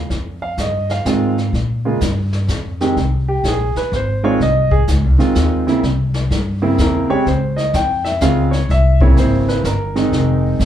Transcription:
0.10 0.56 F2 medium
0.10 brush sweep soft
0.10 kick soft
0.10 snare soft
0.42 0.57 F5 medium
0.58 1.04 G2 medium
0.58 0.89 D#5 medium
0.58 kick soft
0.58 snare medium
0.58 hi-hat pedal medium
0.89 1.50 F5 medium
0.89 snare soft
1.05 1.51 G#2 medium
1.05 1.33 D#3 medium
1.05 1.34 G#3 medium
1.05 1.34 C4 medium
1.05 1.34 F4 medium
1.05 kick soft
1.05 snare medium
1.05 hi-hat pedal medium
1.38 snare soft
1.53 1.99 A#2 medium
1.53 brush sweep soft
1.53 kick soft
1.53 snare soft
1.85 1.99 C#3 medium
1.85 2.00 G#3 medium
1.85 2.00 A#3 medium
1.85 2.00 F4 medium
2.01 2.47 G2 medium
2.01 kick soft
2.01 snare medium
2.01 hi-hat pedal medium
2.33 snare soft
2.48 2.94 F2 medium
2.48 kick soft
2.48 snare medium
2.48 hi-hat pedal soft
2.81 2.95 D#3 medium
2.81 2.95 G#3 soft
2.81 2.95 C4 medium
2.81 2.95 G4 medium
2.81 snare soft
2.97 3.43 C2 medium
2.97 brush sweep soft
2.97 kick soft
2.97 snare soft
3.28 3.44 G4 medium
3.44 3.73 A#1 medium
3.44 kick soft
3.44 snare medium
3.44 hi-hat pedal soft
3.48 3.76 G#4 medium
3.75 3.92 B4 medium
3.75 muted upright bass stroke soft
3.75 snare soft
3.92 4.38 G#1 medium
3.92 kick soft
3.92 snare soft
3.96 4.24 C5 medium
4.24 4.38 D#3 medium
4.24 4.38 G#3 medium
4.24 4.38 C4 medium
4.24 4.38 F4 medium
4.24 4.40 C#5 medium
4.40 4.86 C2 medium
4.40 4.71 D#5 medium
4.40 brush sweep soft
4.40 kick soft
4.40 snare soft
4.71 4.81 G#4 medium
4.71 kick medium
4.88 5.04 C#2 medium
4.88 kick soft
4.88 snare medium
4.88 hi-hat pedal medium
5.04 5.18 C2 medium
5.19 5.33 G#1 medium
5.19 5.63 D#3 medium
5.19 5.63 G#3 medium
5.19 5.63 C4 medium
5.19 5.63 F4 medium
5.19 snare soft
5.35 5.81 D#2 medium
5.35 kick soft
5.35 snare medium
5.35 hi-hat pedal medium
5.67 5.81 C#3 medium
5.67 5.81 A#3 medium
5.67 5.81 C4 medium
5.67 5.82 E4 medium
5.67 snare soft
5.83 6.29 C2 medium
5.83 brush sweep soft
5.83 kick soft
5.83 snare soft
6.14 snare medium
6.30 6.76 G2 medium
6.30 kick soft
6.30 snare soft
6.62 7.06 C#3 medium
6.62 7.06 A#3 medium
6.62 7.06 C4 medium
6.62 7.06 E4 medium
6.78 7.07 E2 medium
6.78 7.10 A#4 medium
6.78 kick soft
6.78 snare medium
6.78 hi-hat pedal medium
7.09 7.24 C#3 medium
7.09 7.24 G#3 medium
7.09 7.24 C4 medium
7.09 7.24 G4 medium
7.09 7.25 C#5 loud
7.09 muted upright bass stroke soft
7.26 7.72 C#2 medium
7.26 7.56 C5 medium
7.26 brush sweep soft
7.26 kick soft
7.26 snare soft
7.56 7.72 D#5 medium
7.56 snare soft
7.73 8.19 F2 medium
7.73 8.04 G5 medium
7.73 kick soft
7.73 snare medium
7.73 hi-hat pedal medium
8.05 8.20 E5 medium
8.05 snare soft
8.21 8.67 C#2 medium
8.21 8.49 C#3 medium
8.21 8.49 G#3 medium
8.21 8.49 C4 medium
8.21 8.50 F4 medium
8.21 8.51 F5 medium
8.21 kick soft
8.21 snare medium
8.21 hi-hat pedal medium
8.51 8.67 C#5 medium
8.51 snare soft
8.69 9.15 C2 medium
8.69 9.00 E5 loud
8.69 brush sweep medium
8.69 kick soft
8.69 snare soft
9.01 9.61 C#3 medium
9.01 9.61 A#3 medium
9.01 9.61 C4 medium
9.01 9.61 E4 medium
9.01 9.16 C#5 medium
9.01 kick medium
9.17 9.62 G#1 medium
9.17 9.47 C5 medium
9.17 snare medium
9.17 hi-hat pedal medium
9.48 9.64 B4 medium
9.48 snare soft
9.64 10.10 G1 medium
9.64 10.39 A#4 medium
9.64 kick soft
9.64 snare medium
9.64 hi-hat pedal medium
9.96 10.56 D#3 medium
9.96 10.56 G#3 medium
9.96 10.56 C4 medium
9.96 10.56 D#4 medium
9.96 snare soft
10.11 10.57 F1 medium
10.11 brush sweep soft
10.11 kick soft
10.11 snare soft
10.59 10.65 G#1 loud
10.59 kick soft
10.59 snare medium
10.59 hi-hat pedal medium

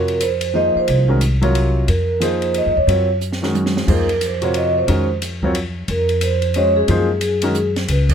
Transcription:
0.00 0.72 F2 medium
0.00 0.19 C3 medium
0.00 0.19 F4 medium
0.00 0.19 F#4 medium
0.00 0.20 A#4 medium
0.00 0.24 A#4 medium
0.00 0.20 C#5 medium
0.08 ride soft
0.21 0.56 C5 medium
0.21 hi-hat pedal medium
0.21 ride medium
0.41 ride medium
0.54 1.04 F3 medium
0.54 1.05 A#3 medium
0.54 1.05 D#4 medium
0.54 1.05 G#4 soft
0.54 1.05 C5 medium
0.54 0.75 D#5 medium
0.75 1.07 C5 medium
0.75 muted upright bass stroke soft
0.88 1.84 C2 medium
0.88 ride medium
1.08 1.20 D#3 medium
1.08 1.20 G#3 medium
1.08 1.20 C#4 medium
1.08 1.20 F#4 medium
1.08 1.21 A#4 medium
1.21 hi-hat pedal medium
1.21 ride medium
1.41 1.86 C3 medium
1.41 1.85 F#3 medium
1.41 1.86 F4 medium
1.41 1.86 A#4 medium
1.41 1.86 C#5 medium
1.41 ride soft
1.55 ride soft
1.88 2.62 F2 medium
1.88 2.23 A#4 medium
1.88 ride medium
2.20 2.71 F3 medium
2.20 2.71 A#3 medium
2.20 2.72 D#4 medium
2.20 2.72 G#4 medium
2.20 2.72 C5 medium
2.20 hi-hat pedal soft
2.20 ride medium
2.25 2.57 C5 medium
2.42 ride soft
2.54 2.76 D#5 medium
2.54 ride medium
2.66 2.76 F#2 medium
2.77 2.86 E2 medium
2.77 3.08 C#5 medium
2.87 3.84 F#2 medium
2.87 3.07 F#3 medium
2.87 3.07 C4 soft
2.87 3.07 F4 soft
2.87 3.08 A#4 soft
2.87 3.08 C#5 medium
2.87 ride medium
3.21 hi-hat pedal medium
3.32 snare soft
3.42 3.85 D#3 medium
3.42 3.86 G#3 medium
3.42 3.86 C#4 soft
3.42 3.86 F#4 medium
3.42 3.87 A#4 medium
3.42 snare medium
3.54 hi-hat pedal soft
3.54 high tom medium
3.66 snare medium
3.77 snare medium
3.87 4.84 F2 medium
3.87 4.07 F3 medium
3.87 4.07 A#3 medium
3.87 4.07 D#4 medium
3.87 4.07 G#4 medium
3.87 4.08 C5 medium
3.87 kick medium
3.87 crash medium
3.92 4.25 A#4 medium
4.09 ride soft
4.21 hi-hat pedal medium
4.21 ride medium
4.26 4.58 C5 medium
4.42 4.86 C3 medium
4.42 4.86 F4 medium
4.42 4.86 F#4 medium
4.42 4.86 A#4 medium
4.42 4.87 C#5 medium
4.42 ride soft
4.54 4.66 D#5 medium
4.54 ride medium
4.78 5.08 C5 medium
4.87 5.84 F2 medium
4.87 5.07 D#3 medium
4.87 5.07 G#3 medium
4.87 5.07 C#4 medium
4.87 5.07 F#4 medium
4.87 5.07 A#4 medium
4.87 ride medium
5.22 hi-hat pedal soft
5.22 ride medium
5.42 5.54 F#3 medium
5.42 5.54 C4 medium
5.42 5.55 F4 medium
5.42 5.55 A#4 medium
5.42 5.55 C#5 medium
5.42 kick soft
5.55 ride medium
5.88 6.84 F2 medium
5.88 6.24 A#4 medium
5.88 ride medium
6.09 ride soft
6.21 6.54 C5 medium
6.21 hi-hat pedal medium
6.21 ride medium
6.42 ride soft
6.54 7.05 G#3 medium
6.54 7.06 C#4 soft
6.54 7.06 F#4 medium
6.54 6.89 C5 medium
6.54 6.75 C#5 medium
6.54 7.06 D#5 medium
6.54 ride medium
6.77 7.72 G#4 medium
6.88 7.84 F#2 medium
6.88 7.07 F3 medium
6.88 7.07 A#3 medium
6.88 7.08 D#4 medium
6.88 7.08 G#4 medium
6.88 7.08 C5 medium
6.88 ride medium
7.21 hi-hat pedal medium
7.21 ride medium
7.42 7.54 D#3 medium
7.42 7.54 G#3 medium
7.42 7.54 C#4 medium
7.42 7.54 F#4 medium
7.42 7.55 A#4 medium
7.42 ride medium
7.54 hi-hat pedal medium
7.76 snare medium
7.76 ride soft
7.88 8.14 C#2 medium
7.88 8.09 B4 medium
7.88 ride medium
8.09 kick medium
8.09 crash medium

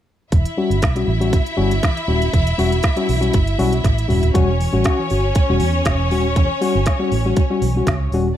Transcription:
0.32 0.43 E1 medium
0.32 0.47 E3 soft
0.32 4.31 E4 medium
0.32 4.31 E5 medium
0.32 kick medium
0.32 closed hi-hat medium
0.45 closed hi-hat soft
0.57 0.71 G3 medium
0.57 0.70 C#4 medium
0.57 0.70 F#4 medium
0.70 0.80 G1 medium
0.70 0.76 C#4 soft
0.70 0.76 F#4 soft
0.70 closed hi-hat soft
0.82 1.03 B1 medium
0.82 kick loud
0.82 snare loud
0.82 closed hi-hat medium
0.95 1.08 G3 medium
0.95 1.09 C#4 medium
0.95 1.09 F#4 medium
0.95 closed hi-hat soft
1.08 1.38 A1 medium
1.08 1.22 E3 medium
1.20 1.33 G3 medium
1.20 1.33 C#4 medium
1.20 1.34 F#4 medium
1.20 closed hi-hat soft
1.33 kick loud
1.33 closed hi-hat medium
1.46 closed hi-hat soft
1.57 1.78 G1 medium
1.57 1.71 G3 loud
1.57 1.71 C#4 medium
1.57 1.72 F#4 medium
1.71 closed hi-hat soft
1.83 1.97 E3 medium
1.83 kick loud
1.83 snare loud
1.83 closed hi-hat medium
1.97 closed hi-hat soft
2.08 2.28 D#1 medium
2.08 2.22 G3 medium
2.08 2.21 C#4 medium
2.08 2.20 F#4 medium
2.22 2.27 C#4 soft
2.22 2.27 F#4 soft
2.22 closed hi-hat soft
2.33 2.54 E1 medium
2.33 2.47 E3 medium
2.33 kick medium
2.33 closed hi-hat medium
2.47 closed hi-hat medium
2.58 2.79 E1 medium
2.58 2.72 G3 medium
2.58 2.71 C#4 medium
2.58 2.70 F#4 medium
2.58 open hi-hat medium
2.72 2.77 C#4 soft
2.72 2.77 F#4 soft
2.72 closed hi-hat soft
2.83 kick loud
2.83 snare loud
2.83 closed hi-hat medium
2.96 3.09 G3 medium
2.96 3.10 C#4 medium
2.96 3.10 F#4 medium
2.96 closed hi-hat soft
3.08 3.29 B1 medium
3.08 3.22 E3 medium
3.08 open hi-hat medium
3.21 3.34 G3 medium
3.21 3.34 C#4 medium
3.21 3.34 F#4 medium
3.21 closed hi-hat soft
3.33 3.54 G1 medium
3.33 kick loud
3.33 closed hi-hat medium
3.47 closed hi-hat soft
3.58 3.79 B1 medium
3.58 3.73 G3 loud
3.58 3.73 C#4 medium
3.58 3.73 F#4 loud
3.58 open hi-hat medium
3.73 closed hi-hat soft
3.84 4.04 A1 medium
3.84 3.98 E3 medium
3.84 kick medium
3.84 snare soft
3.84 closed hi-hat medium
3.98 closed hi-hat soft
4.08 4.30 D#1 medium
4.08 4.23 G3 medium
4.08 4.22 C#4 medium
4.08 4.22 F#4 medium
4.08 mid tom medium
4.08 open hi-hat soft
4.23 4.28 C#4 soft
4.23 4.28 F#4 soft
4.23 closed hi-hat soft
4.23 floor tom medium
4.34 4.66 E1 loud
4.34 4.48 G3 medium
4.34 4.48 C#4 medium
4.34 8.08 C#4 medium
4.34 4.48 F#4 loud
4.34 8.08 C#5 medium
4.34 kick loud
4.34 closed hi-hat medium
4.60 4.74 E3 medium
4.60 open hi-hat medium
4.73 4.83 A1 medium
4.73 4.85 G3 medium
4.73 4.84 C#4 medium
4.73 4.84 F#4 medium
4.84 4.99 C#4 medium
4.84 4.99 F#4 medium
4.84 kick loud
4.84 snare loud
4.84 closed hi-hat medium
4.99 5.11 E3 medium
5.10 5.31 G1 medium
5.10 5.24 C#4 medium
5.10 5.24 F#4 medium
5.10 open hi-hat medium
5.35 kick loud
5.35 closed hi-hat medium
5.49 5.59 E1 loud
5.49 5.61 G3 medium
5.49 5.61 C#4 medium
5.49 5.62 F#4 medium
5.60 5.81 E2 medium
5.60 open hi-hat medium
5.75 5.86 E3 medium
5.85 6.12 E1 medium
5.85 5.91 C#4 soft
5.85 5.91 F#4 soft
5.85 kick loud
5.85 snare loud
5.85 closed hi-hat medium
5.99 6.11 E3 medium
6.11 6.36 D#1 medium
6.11 6.25 G3 medium
6.11 6.25 C#4 medium
6.11 6.25 F#4 medium
6.11 open hi-hat soft
6.36 6.47 E1 loud
6.36 6.50 E3 medium
6.36 kick loud
6.36 closed hi-hat medium
6.61 6.75 G3 medium
6.61 6.74 C#4 medium
6.61 6.73 F#4 medium
6.61 open hi-hat medium
6.75 6.84 G1 medium
6.75 6.79 C#4 soft
6.75 6.79 F#4 soft
6.86 kick loud
6.86 snare loud
6.86 closed hi-hat medium
6.99 7.12 G3 medium
6.99 7.12 C#4 medium
6.99 7.12 F#4 medium
7.12 7.31 A1 medium
7.12 7.25 E3 medium
7.12 open hi-hat medium
7.25 7.37 G3 medium
7.25 7.37 C#4 medium
7.25 7.38 F#4 medium
7.36 kick loud
7.36 closed hi-hat medium
7.50 7.62 G3 medium
7.50 7.62 C#4 medium
7.50 7.62 F#4 medium
7.62 7.82 B1 medium
7.62 7.76 E3 medium
7.62 open hi-hat medium
7.76 7.88 G3 medium
7.76 7.88 C#4 medium
7.76 7.88 F#4 medium
7.87 8.07 C#2 loud
7.87 kick medium
7.87 snare loud
7.87 closed hi-hat medium
8.12 8.32 D#1 medium
8.12 8.26 G3 medium
8.12 8.26 C#4 medium
8.12 8.27 F#4 medium
8.12 open hi-hat soft

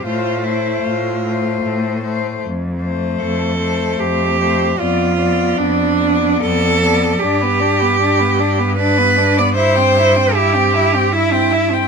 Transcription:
0.04 0.74 A2 medium
0.04 0.44 A3 soft
0.04 0.45 F4 medium
0.04 0.43 C5 soft
0.44 1.23 A3 soft
0.44 0.85 E4 medium
0.44 1.22 C5 soft
0.84 1.54 A2 soft
0.84 1.64 F4 medium
1.25 2.03 A3 soft
1.25 2.02 C5 soft
1.64 2.34 A2 soft
2.03 2.42 A3 soft
2.03 2.42 C5 soft
2.44 3.12 F2 medium
2.81 3.60 A3 soft
2.81 3.59 C5 soft
3.21 3.91 F2 medium
3.21 4.01 A4 medium
3.60 4.39 A3 soft
3.60 4.38 C5 soft
3.99 4.70 F2 medium
3.99 4.81 G4 medium
4.39 4.79 A3 soft
4.39 4.78 C5 medium
4.79 5.49 F2 medium
4.79 5.19 B3 soft
4.79 5.60 F4 medium
4.79 5.18 D5 medium
5.19 5.99 B3 medium
5.19 5.98 D5 medium
5.58 6.32 F2 medium
5.58 6.41 D4 medium
6.00 6.81 B3 medium
6.00 6.80 D5 medium
6.40 7.11 F2 medium
6.40 7.21 A4 loud
6.83 7.20 B3 medium
6.83 7.20 D5 medium
7.19 11.88 G2 medium
7.19 7.44 D4 medium
7.19 8.76 G4 medium
7.19 7.43 D5 medium
7.41 7.62 B3 medium
7.41 7.62 B4 medium
7.60 7.83 D4 medium
7.60 7.82 D5 medium
7.80 8.00 B3 medium
7.80 7.99 B4 medium
8.01 8.21 D4 medium
8.01 8.21 D5 medium
8.19 8.40 B3 medium
8.19 8.40 B4 medium
8.39 8.60 D4 medium
8.39 8.60 D5 soft
8.58 8.78 B3 medium
8.58 8.78 B4 medium
8.77 8.99 D4 medium
8.77 9.39 B4 loud
8.77 8.99 D5 medium
8.97 9.19 B3 medium
8.97 9.19 B4 medium
9.17 9.40 D4 medium
9.17 9.38 D5 medium
9.37 9.57 B3 medium
9.37 9.56 B4 medium
9.37 9.55 D5 medium
9.55 9.79 E4 medium
9.55 10.36 C5 medium
9.55 9.77 E5 medium
9.75 10.00 C4 medium
9.75 9.98 G5 medium
9.96 10.18 E4 medium
9.96 10.17 E5 medium
10.15 10.36 C4 medium
10.15 10.34 G5 medium
10.35 10.56 E4 medium
10.35 11.14 G4 medium
10.35 10.55 E5 medium
10.53 10.77 C4 medium
10.53 10.75 G5 medium
10.73 10.96 E4 medium
10.73 10.95 E5 soft
10.94 11.13 C4 soft
10.94 11.13 G5 medium
11.12 11.88 E4 medium
11.12 11.34 E4 medium
11.12 11.34 E5 medium
11.32 11.54 C4 medium
11.32 11.54 G5 medium
11.52 11.72 E4 medium
11.52 11.74 E5 medium
11.70 11.88 C4 soft
11.70 11.88 G5 medium

